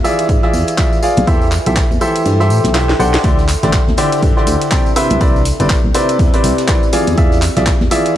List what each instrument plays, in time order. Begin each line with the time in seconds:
Already playing: ambient pad F4 B4 E5
0.03 upright piano E3 F4 G#4 D5 E5, ambient pad G#5, ride, tambourine
0.19 closed hi-hat, tambourine
0.29 fm bass G#2, kick, closed hi-hat, ride, tambourine
0.43 upright piano E3 F4 G#4 D5 E5, snare
0.54 fm bass E2, ride, tambourine
0.68 closed hi-hat, ride, tambourine
0.78 upright piano E3 F4 G#4 D5 E5, kick, snare, clap, closed hi-hat, ride, tambourine
0.92 ride, tambourine
1.03 upright piano F4 G#4 D5 F5, ride, tambourine
1.17 fm bass B1, closed hi-hat, ride, tambourine, high conga
1.27 fm bass E2, upright piano E3 G4 A4 C5 E5, ambient pad A4, kick, closed hi-hat, ride, tambourine
1.42 ride, tambourine
1.52 clap, ride, tambourine
1.66 fm bass B1, upright piano E3 G4 A4 C5 E5, closed hi-hat, tambourine
1.76 kick, snare, clap, closed hi-hat, ride, tambourine
1.91 fm bass E2, ambient pad C6, tambourine, high conga
2.01 upright piano E3 G4 A4 C5 E5, ride, tambourine
2.16 closed hi-hat, tambourine
2.25 fm bass G2, closed hi-hat, ride, tambourine
2.40 upright piano E3 G4 A4 C5 E5, snare, tambourine
2.50 fm bass A2, ride, tambourine
2.64 fm bass B1, snare, closed hi-hat, tambourine, high conga
2.74 upright piano E3 G4 A4 C5 E5, snare, clap, closed hi-hat, ride, tambourine
2.89 snare, tambourine
2.99 fm bass B1, upright piano D4 G4 A4 C5 F#5, ride, tambourine
3.13 snare, closed hi-hat, ride, tambourine
3.24 fm bass D2, upright piano D3 E4 G4 C5 D5, ambient pad D4, kick, closed hi-hat, ride, tambourine
3.39 snare, tambourine
3.48 clap, open hi-hat, ride, tambourine
3.63 fm bass A1, upright piano D3 E4 G4 C5 D5, snare, closed hi-hat, tambourine
3.73 kick, snare, clap, closed hi-hat, ride, tambourine
3.87 fm bass D2, snare, high conga
3.96 upright piano D3 E4 G4 C5 D5, open hi-hat, ride, tambourine
4.02 ambient pad G5
4.12 closed hi-hat, tambourine
4.22 fm bass G2, kick, closed hi-hat, ride, tambourine
4.37 upright piano D3 E4 G4 C5 D5, snare
4.47 fm bass D2, open hi-hat, ride, tambourine
4.61 closed hi-hat, ride, tambourine
4.71 upright piano C3 E4 G4 C5 D5, kick, snare, clap, closed hi-hat, ride, tambourine
4.86 ride, tambourine
4.96 upright piano C3 E4 B4 C5 E5, ambient pad C4, open hi-hat, ride, tambourine
5.10 fm bass C2, closed hi-hat, ride, tambourine, high conga
5.20 fm bass C2, upright piano C3 E4 B4 C5 D5, kick, closed hi-hat, ride, tambourine
5.29 ambient pad G4
5.36 ambient pad D5, ride, tambourine
5.45 open hi-hat, ride, tambourine
5.60 fm bass G1, upright piano C3 E4 B4 C5 D5, closed hi-hat, tambourine
5.70 kick, snare, clap, closed hi-hat, ride, tambourine
5.84 fm bass C2, high conga
5.94 upright piano C3 E4 B4 C5 D5, open hi-hat, ride, tambourine
6.09 closed hi-hat, tambourine
6.19 fm bass E2, kick, closed hi-hat, ride, tambourine
6.33 upright piano C3 E4 B4 C5 D5, snare, open hi-hat
6.43 fm bass C2, open hi-hat, ride, tambourine
6.58 snare, closed hi-hat, tambourine
6.68 upright piano E3 E4 B4 C5 D5, kick, snare, clap, closed hi-hat, ride, tambourine
6.83 ride, tambourine
6.93 upright piano E3 F4 G#4 D5 F5, ambient pad F4, open hi-hat, ride, tambourine
7.07 fm bass E2, closed hi-hat, tambourine
7.18 fm bass E2, upright piano E3 F4 G#4 D5 E5, kick, closed hi-hat, ride, tambourine
7.32 snare, tambourine
7.40 ambient pad B4, clap, open hi-hat, ride, tambourine
7.57 fm bass B1, upright piano E3 F4 G#4 D5 E5, snare, closed hi-hat, tambourine
7.66 kick, snare, clap, closed hi-hat, ride, tambourine
7.81 fm bass E2, snare, high conga
7.91 upright piano E3 F4 G#4 D5 E5, ambient pad G#5, open hi-hat, ride, tambourine
8.06 closed hi-hat, tambourine